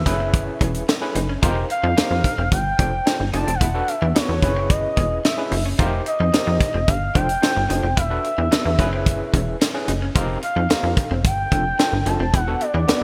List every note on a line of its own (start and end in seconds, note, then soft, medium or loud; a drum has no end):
0.00 0.84 E5 loud
0.06 0.50 F#1 loud
0.06 0.82 C#4 loud
0.06 0.82 E4 medium
0.06 0.83 G#4 medium
0.06 0.83 B4 loud
0.06 muted clean electric guitar stroke soft
0.06 kick medium
0.06 closed hi-hat medium
0.20 0.31 C4 medium
0.34 kick loud
0.34 closed hi-hat loud
0.61 0.83 E1 loud
0.61 0.71 C#4 medium
0.61 kick loud
0.61 closed hi-hat medium
0.74 closed hi-hat medium
0.88 muted clean electric guitar stroke soft
0.88 snare loud
0.88 closed hi-hat medium
1.01 1.18 C#4 loud
1.01 1.18 E4 medium
1.01 1.18 G#4 medium
1.01 1.18 B4 loud
1.15 1.37 F#1 medium
1.15 1.26 D#4 medium
1.15 closed hi-hat medium
1.29 1.40 C#4 medium
1.42 1.65 F1 loud
1.42 1.64 D#4 loud
1.42 1.53 F4 medium
1.42 1.64 G4 loud
1.42 1.65 A#4 loud
1.42 1.65 C5 loud
1.42 kick loud
1.42 closed hi-hat loud
1.70 2.48 F5 loud
1.70 muted clean electric guitar stroke soft
1.70 closed hi-hat medium
1.83 1.94 F2 loud
1.83 1.94 D#4 medium
1.97 2.03 F2 soft
1.97 2.08 A#3 loud
1.97 2.30 D#4 medium
1.97 2.30 G4 medium
1.97 2.30 A#4 medium
1.97 2.30 C5 medium
1.97 snare loud
1.97 closed hi-hat loud
2.11 2.22 F2 medium
2.24 muted clean electric guitar stroke soft
2.24 kick loud
2.24 closed hi-hat medium
2.38 2.49 F1 loud
2.38 2.49 C4 medium
2.52 2.74 G1 loud
2.52 3.30 G5 loud
2.52 kick loud
2.52 closed hi-hat loud
2.79 3.01 F1 medium
2.79 2.90 D4 medium
2.79 2.90 F4 medium
2.79 2.90 A4 medium
2.79 2.90 C5 medium
2.79 kick loud
2.79 closed hi-hat medium
3.06 3.17 D4 medium
3.06 3.17 F4 medium
3.06 3.17 A4 medium
3.06 3.18 C5 medium
3.06 muted clean electric guitar stroke soft
3.06 snare loud
3.06 closed hi-hat medium
3.20 3.31 G1 medium
3.33 3.45 F#1 medium
3.33 3.50 D4 medium
3.33 3.44 D#4 medium
3.33 3.50 F4 medium
3.33 3.50 A4 medium
3.33 3.50 D5 medium
3.33 3.56 A5 loud
3.33 closed hi-hat medium
3.47 3.58 F1 medium
3.47 3.58 C4 medium
3.47 closed hi-hat medium
3.54 3.62 F5 medium
3.61 3.83 E1 medium
3.61 3.71 E4 medium
3.61 3.90 F#5 loud
3.61 kick loud
3.61 closed hi-hat loud
3.74 3.91 D4 medium
3.74 3.91 F#4 medium
3.74 3.91 A4 medium
3.74 3.91 B4 medium
3.88 4.15 E5 loud
3.88 muted clean electric guitar stroke soft
3.88 closed hi-hat medium
4.02 4.13 E2 loud
4.02 4.12 D4 medium
4.15 4.26 B3 loud
4.15 4.43 D4 medium
4.15 4.43 F#4 medium
4.15 4.43 A4 medium
4.15 4.42 B4 medium
4.15 4.72 C#5 loud
4.15 snare loud
4.15 closed hi-hat loud
4.29 4.40 E2 loud
4.42 4.86 F#1 loud
4.42 5.19 C#4 medium
4.42 5.19 E4 medium
4.42 5.19 G#4 medium
4.42 5.19 B4 medium
4.42 muted clean electric guitar stroke soft
4.42 kick loud
4.42 closed hi-hat medium
4.56 4.67 C4 medium
4.70 5.24 D#5 loud
4.70 kick loud
4.70 closed hi-hat loud
4.97 5.19 E1 loud
4.97 5.08 C#4 medium
4.97 kick loud
4.97 closed hi-hat medium
5.25 5.63 E5 medium
5.25 muted clean electric guitar stroke soft
5.25 snare medium
5.25 closed hi-hat medium
5.38 5.54 C#4 medium
5.38 5.54 E4 medium
5.38 5.54 G#4 medium
5.38 5.55 B4 medium
5.51 5.74 F#1 loud
5.51 5.62 D#4 medium
5.51 open hi-hat medium
5.66 5.76 C#4 medium
5.79 6.01 F1 loud
5.79 6.01 D#4 loud
5.79 5.89 F4 medium
5.79 6.01 G4 loud
5.79 6.01 A#4 loud
5.79 6.01 C5 loud
5.79 kick loud
5.79 closed hi-hat medium
6.06 6.90 D#5 loud
6.06 muted clean electric guitar stroke soft
6.06 closed hi-hat medium
6.20 6.31 F2 loud
6.20 6.31 D#4 medium
6.33 6.39 F2 soft
6.33 6.44 A#3 loud
6.33 6.66 D#4 medium
6.33 6.66 G4 medium
6.33 6.66 A#4 medium
6.33 6.67 C5 medium
6.33 snare loud
6.33 closed hi-hat loud
6.47 6.58 F2 loud
6.61 muted clean electric guitar stroke soft
6.61 kick loud
6.61 closed hi-hat medium
6.74 6.85 F1 loud
6.74 6.85 C4 medium
6.88 7.10 G1 loud
6.88 7.17 F5 loud
6.88 kick loud
6.88 closed hi-hat loud
7.15 7.37 F1 medium
7.15 7.26 D4 medium
7.15 7.26 F4 medium
7.15 7.26 A4 medium
7.15 7.26 C5 medium
7.15 7.97 G5 loud
7.15 kick loud
7.15 closed hi-hat medium
7.29 closed hi-hat medium
7.42 7.53 D4 medium
7.42 7.53 F4 medium
7.42 7.54 A4 medium
7.42 7.54 C5 medium
7.42 muted clean electric guitar stroke soft
7.42 snare loud
7.42 closed hi-hat medium
7.56 7.67 G1 loud
7.69 7.81 F#1 loud
7.69 7.86 D4 medium
7.69 7.80 D#4 medium
7.69 7.86 F4 medium
7.69 7.86 A4 medium
7.69 7.86 C5 medium
7.69 closed hi-hat medium
7.83 7.95 F1 loud
7.83 7.94 C4 medium
7.97 8.19 E1 loud
7.97 8.08 E4 medium
7.97 9.57 E5 loud
7.97 kick loud
7.97 closed hi-hat loud
8.10 8.27 D4 medium
8.10 8.27 F#4 medium
8.10 8.27 A4 medium
8.10 8.27 B4 medium
8.24 muted clean electric guitar stroke soft
8.24 closed hi-hat medium
8.38 8.49 E2 loud
8.38 8.49 D4 medium
8.51 8.57 E2 soft
8.51 8.62 B3 medium
8.51 8.79 D4 medium
8.51 8.79 F#4 medium
8.51 8.79 A4 medium
8.51 8.78 B4 medium
8.51 snare loud
8.51 closed hi-hat loud
8.65 8.76 E2 loud
8.79 9.23 F#1 loud
8.79 9.55 C#4 loud
8.79 9.55 E4 medium
8.79 9.55 G#4 medium
8.79 9.56 B4 loud
8.79 muted clean electric guitar stroke soft
8.79 kick loud
8.79 closed hi-hat medium
8.93 9.03 C4 medium
9.06 kick loud
9.06 closed hi-hat medium
9.34 9.56 E1 loud
9.34 9.44 C#4 medium
9.34 kick medium
9.34 closed hi-hat medium
9.61 muted clean electric guitar stroke soft
9.61 snare medium
9.61 closed hi-hat medium
9.74 9.91 C#4 loud
9.74 9.91 E4 medium
9.74 9.91 G#4 medium
9.74 9.91 B4 loud
9.88 10.10 F#1 medium
9.88 9.99 D#4 medium
9.88 closed hi-hat medium
10.02 10.12 C#4 medium
10.15 10.37 F1 loud
10.15 10.37 C4 loud
10.15 10.37 D#4 loud
10.15 10.26 F4 medium
10.15 10.37 G4 loud
10.15 10.37 A#4 loud
10.15 kick loud
10.15 closed hi-hat loud
10.42 10.94 F5 loud
10.42 muted clean electric guitar stroke soft
10.42 closed hi-hat medium
10.56 10.67 F2 loud
10.56 10.67 D#4 medium
10.70 10.75 F2 soft
10.70 10.81 A#3 loud
10.70 11.03 C4 medium
10.70 11.03 D#4 medium
10.70 11.03 G4 medium
10.70 11.03 A#4 medium
10.70 snare loud
10.70 closed hi-hat loud
10.83 10.94 F2 loud
10.97 muted clean electric guitar stroke soft
10.97 kick loud
10.97 closed hi-hat medium
11.11 11.26 F1 loud
11.11 11.21 C4 medium
11.24 11.46 G1 loud
11.24 12.08 G5 loud
11.24 kick loud
11.24 closed hi-hat loud
11.52 11.74 F1 loud
11.52 11.63 C4 medium
11.52 11.63 D4 medium
11.52 11.62 D4 medium
11.52 11.63 F4 medium
11.52 11.63 A4 medium
11.52 kick medium
11.52 closed hi-hat medium
11.79 11.90 C4 medium
11.79 11.90 D4 medium
11.79 11.90 F4 medium
11.79 11.90 A4 medium
11.79 muted clean electric guitar stroke soft
11.79 snare medium
11.79 closed hi-hat medium
11.93 12.04 G1 medium
12.06 12.17 F#1 loud
12.06 12.23 C4 medium
12.06 12.23 D4 medium
12.06 12.17 D#4 medium
12.06 12.23 F4 medium
12.06 12.23 A4 medium
12.06 12.33 A5 loud
12.06 closed hi-hat medium
12.20 12.31 F1 loud
12.20 12.30 C4 medium
12.34 12.56 E1 loud
12.34 12.44 E4 medium
12.34 12.63 F#5 loud
12.34 kick loud
12.34 closed hi-hat loud
12.47 12.63 B3 medium
12.47 12.64 D4 medium
12.47 12.64 F#4 medium
12.47 12.64 A4 medium
12.61 13.03 D5 loud
12.61 muted clean electric guitar stroke soft
12.61 closed hi-hat medium
12.74 12.85 E2 loud
12.74 12.85 D4 medium
12.88 12.93 E2 soft
12.88 13.03 B3 medium
12.88 12.99 B3 loud
12.88 13.03 D4 medium
12.88 13.03 F#4 medium
12.88 13.03 B4 medium
12.88 snare loud
12.88 closed hi-hat medium